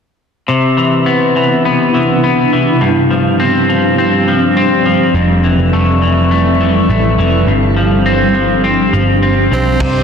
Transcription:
0.48 clean electric guitar C3, ambient pad C3 B3 D4 E4
0.77 clean electric guitar E3
1.06 clean electric guitar B3
1.36 clean electric guitar E3
1.65 clean electric guitar B3
1.94 clean electric guitar E3
2.24 clean electric guitar B3
2.53 clean electric guitar E3
2.81 clean electric guitar G2, ambient pad G3 C4 G4
3.11 clean electric guitar F3
3.40 clean electric guitar C4
3.69 clean electric guitar F3
3.98 clean electric guitar C4
4.28 clean electric guitar F3
4.57 clean electric guitar C4
4.86 clean electric guitar F3
5.14 picked electric bass F1, clean electric guitar F2, ambient pad E4 A4
5.44 clean electric guitar E3
5.58 picked electric bass F1
5.73 picked electric bass F1, clean electric guitar A3
6.02 clean electric guitar E3
6.31 clean electric guitar A3
6.61 clean electric guitar E3
6.89 picked electric bass A1, clean electric guitar A3
7.18 picked electric bass F1, clean electric guitar E3
7.47 picked electric bass G1, clean electric guitar G2, ambient pad D4 G4
7.76 clean electric guitar F3
8.06 clean electric guitar C4
8.35 clean electric guitar F3
8.64 clean electric guitar C4
8.93 picked electric bass G1, clean electric guitar F3
9.22 clean electric guitar C4
9.51 picked electric bass B1, clean electric guitar F3, tenor saxophone C4
9.80 picked electric bass C2, clean electric guitar C3, ambient pad C3 E4 B4 D5, kick, floor tom, crash

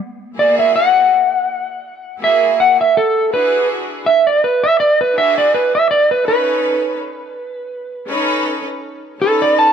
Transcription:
0.35 string section A#3 E4 F#4 G#4
0.39 electric slide guitar D5
0.59 electric slide guitar E5
0.76 electric slide guitar F#5
2.18 string section A#3 E4 F#4 G#4
2.24 electric slide guitar E5
2.60 electric slide guitar F#5
2.81 electric slide guitar E5
2.97 electric slide guitar A4
3.31 string section D4 E4 F#4 G#4, electric slide guitar B4
4.06 electric slide guitar E5
4.27 electric slide guitar D5
4.44 electric slide guitar B4
4.64 electric slide guitar E5
4.80 electric slide guitar D5
5.01 electric slide guitar B4
5.14 string section D4 E4 F#4 G#4
5.18 electric slide guitar E5
5.38 electric slide guitar D5
5.54 electric slide guitar B4
5.75 electric slide guitar E5
5.91 electric slide guitar D5
6.11 electric slide guitar B4
6.24 string section C#4 D#4 A4 B4, electric slide guitar B4
8.07 string section C#4 D#4 A4 B4
9.20 string section C#4 D#4 A4 B4, electric slide guitar A4
9.42 electric slide guitar D5
9.59 electric slide guitar A5

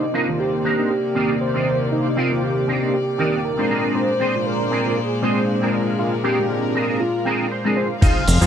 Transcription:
Already playing: string section C3 A#3 D5, analog synth lead D#4
0.13 clean electric guitar C4 D4 D#4 A#4, analog synth lead F4
0.27 analog polysynth D#3 A#3 G4 C5 D5
0.39 analog synth lead G4, muted clean electric guitar stroke
0.64 clean electric guitar C4 D4 D#4 A#4
0.78 analog polysynth A#3 D4 D#4 G4 C5
0.90 analog synth lead G4
1.15 analog polysynth D#3 A#3 G4 D5, clean electric guitar C4 D4 D#4 A#4
1.41 analog synth lead C5
1.54 analog polysynth D#3 A#3 G4 C5 D5, clean electric guitar C4 D4 D#4 A#4
1.79 muted clean electric guitar stroke
1.92 analog polysynth A#3 D4 D#4 G4 C5, analog synth lead D#4
2.16 clean electric guitar C4 D4 D#4 A#4, analog synth lead F4
2.31 analog polysynth D#3 A#3 G4 C5 D5
2.42 analog synth lead G4, muted clean electric guitar stroke
2.67 clean electric guitar C4 D4 D#4 A#4
2.82 analog polysynth A#3 D4 D#4 G4 C5
2.94 analog synth lead G4
3.18 analog polysynth D#3 A#3 G4 D5, clean electric guitar C4 D4 D#4 A#4
3.45 analog synth lead A#4
3.57 analog polysynth G#3 C4 D4 F4 A#4, clean electric guitar C4 D4 D#4 C5
3.69 string section A#2 G#3 C5, clean electric guitar C4 D4 G#4 A#4
3.95 analog polysynth G#3 C4 D4 F4 A#4, analog synth lead C5
4.20 clean electric guitar C4 D4 G#4 C5
4.34 analog polysynth G#3 C4 D4 F4 A#4
4.45 analog synth lead A#4, muted clean electric guitar stroke
4.71 clean electric guitar C4 D4 G#4 A#4
4.85 analog polysynth G#3 C4 D4 F4 A#4
4.97 analog synth lead G#4
5.22 analog polysynth G#3 C4 D4 F4 C5, clean electric guitar C4 D4 G#4 C5, analog synth lead C5
5.61 analog polysynth G#3 C4 D4 F4 A#4, clean electric guitar C4 D4 G#4 A#4
5.74 string section A#4
5.87 muted clean electric guitar stroke
5.99 analog polysynth G#3 C4 D4 F4 A#4, analog synth lead F4
6.23 clean electric guitar C4 D4 G#4 A#4, analog synth lead G4
6.38 analog polysynth G#3 C4 D4 F4 A#4
6.49 muted clean electric guitar stroke
6.74 clean electric guitar C4 D4 G#4 A#4
6.88 analog polysynth G#3 C4 D4 F4 A#4
7.00 analog synth lead F4
7.25 clean electric guitar C4 D4 G#4 A#4
7.51 clean electric guitar C5
7.64 analog polysynth G#3 C4 D4 F4 G#4, clean electric guitar C4 D4 G#4 A#4
7.77 analog synth lead C5, clean electric guitar F5
7.90 muted clean electric guitar stroke
8.01 analog polysynth G#3 C4 D#4 F4 C5, clean electric guitar D#4 F4 G#4 C5, string section D#4 G#4 F5 C6, analog synth lead F5, kick, crash, impact, shaker
8.28 analog synth bass F1, open hi-hat, shaker
8.41 analog synth bass F2, analog polysynth G#3 C4 D#4 F4 C5, clean electric guitar D#4 F4 G#4 C5, shaker

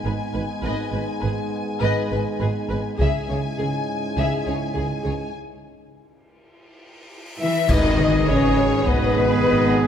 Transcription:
Already playing: trombone section G#2 G#3, french horn section B3 D#4, violin section G#5
0.04 double bass section G#1, cello section G#2, violin section G#4, viola section B4
0.34 double bass section G#1, cello section G#2, viola section B4, violin section B4
0.62 double bass section G#1, cello section G#2, viola section B4, violin section D#5
0.91 double bass section G#1, cello section G#2, viola section B4, violin section B4
1.21 double bass section G#1, cello section G#2, violin section G#4, viola section B4
1.80 double bass section G#1, cello section G#2, viola section B4, violin section D#5
2.10 double bass section G#1, cello section G#2, viola section B4, violin section B4
2.39 double bass section G#1, cello section G#2, violin section G#4, viola section B4
2.69 double bass section G#1, cello section G#2, viola section B4, violin section B4
2.98 double bass section C#2, trombone section G#2 G#3, cello section C#3, french horn section C#4 E4, viola section G#4, violin section E5 G#5, taiko
3.29 double bass section C#2, cello section C#3, viola section G#4, violin section C#5
3.57 double bass section C#2, cello section C#3, viola section G#4, violin section G#4
4.16 double bass section C#2, cello section C#3, viola section G#4, violin section E5
4.45 double bass section C#2, cello section C#3, viola section G#4, violin section C#5
4.75 double bass section C#2, cello section C#3, viola section G#4, violin section G#4
5.03 double bass section C#2, cello section C#3, viola section G#4, violin section C#5
5.34 cymbal swell
7.40 cello section E3, french horn section E4, flute E5, violin section E5
7.68 double bass section G#1, timpani G#2, trombone section D#3 G#3, cello section D#3, french horn section D#4, trumpet section G#4, viola section B4 D#5, violin section D#5, flute D#5, concert bass drum, taiko, crash, sub drop
7.98 viola section G#4 B4, taiko mid
8.27 double bass section G#1, cello section C#3, french horn section C#4, viola section B4 D#5, violin section C#5, flute C#5
8.57 viola section G#4 B4
8.85 double bass section G#1, cello section B2, french horn section B3, viola section B4 D#5, flute B4, violin section B4, taiko
9.17 viola section G#4 B4
9.46 double bass section G#1, viola section B4 D#5
9.76 viola section G#4 B4

